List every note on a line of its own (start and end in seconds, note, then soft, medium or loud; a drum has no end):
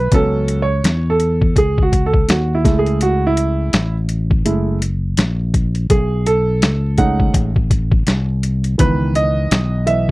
0.00 0.11 B4 medium
0.12 0.80 C#2 medium
0.12 0.62 F#3 medium
0.12 0.63 B3 soft
0.12 0.63 C#4 medium
0.12 0.63 A4 loud
0.12 kick loud
0.12 closed hi-hat medium
0.48 closed hi-hat medium
0.62 1.11 C#5 medium
0.84 1.53 E2 medium
0.84 snare loud
0.84 closed hi-hat medium
1.10 1.54 A4 medium
1.20 closed hi-hat medium
1.42 kick medium
1.56 2.25 C#2 medium
1.56 1.82 G#4 medium
1.56 kick medium
1.56 closed hi-hat medium
1.78 kick medium
1.83 2.06 F#4 medium
1.93 kick medium
1.93 closed hi-hat medium
2.06 2.28 A4 medium
2.13 kick loud
2.28 2.63 D#2 medium
2.28 2.54 F#4 medium
2.28 snare loud
2.28 closed hi-hat medium
2.55 2.64 E4 medium
2.64 3.69 C#2 medium
2.64 3.69 G#3 medium
2.64 3.69 A3 medium
2.64 3.25 E4 medium
2.64 kick loud
2.64 snare soft
2.64 closed hi-hat medium
2.79 3.03 G#4 medium
2.86 closed hi-hat soft
3.01 3.24 F#4 medium
3.01 closed hi-hat medium
3.27 3.94 E4 medium
3.37 closed hi-hat medium
3.73 4.42 A1 medium
3.73 snare loud
3.73 closed hi-hat medium
4.09 closed hi-hat medium
4.31 kick medium
4.45 5.14 F#1 medium
4.45 4.78 G#3 soft
4.45 4.78 A3 soft
4.45 4.78 E4 medium
4.45 closed hi-hat loud
4.82 closed hi-hat medium
5.17 5.86 A#1 medium
5.17 snare loud
5.17 closed hi-hat medium
5.54 kick medium
5.54 closed hi-hat medium
5.75 closed hi-hat soft
5.90 6.62 B1 loud
5.90 6.27 G#4 medium
5.90 kick loud
5.90 closed hi-hat medium
6.26 7.01 A4 medium
6.26 closed hi-hat medium
6.62 7.31 C#2 loud
6.62 snare loud
6.62 closed hi-hat medium
6.98 7.49 G#3 medium
6.98 7.49 A3 soft
6.98 7.49 C#4 soft
6.98 7.49 D#4 medium
6.98 7.32 F#5 medium
6.98 kick medium
6.98 closed hi-hat medium
7.20 kick medium
7.34 8.03 A1 medium
7.34 kick medium
7.34 closed hi-hat medium
7.56 kick medium
7.71 kick loud
7.71 closed hi-hat medium
7.92 kick loud
8.07 8.75 C2 loud
8.07 snare loud
8.07 closed hi-hat medium
8.43 closed hi-hat medium
8.64 closed hi-hat soft
8.78 9.48 C#2 medium
8.78 10.11 D#3 medium
8.78 9.85 E3 medium
8.78 9.86 B3 soft
8.78 9.17 B4 medium
8.78 kick loud
8.78 closed hi-hat medium
9.15 9.86 D#5 loud
9.15 closed hi-hat medium
9.51 10.11 B1 medium
9.51 snare loud
9.51 closed hi-hat medium
9.86 10.11 E3 soft
9.86 10.11 B3 soft
9.86 10.11 D#5 soft
9.86 10.11 E5 medium
9.86 closed hi-hat medium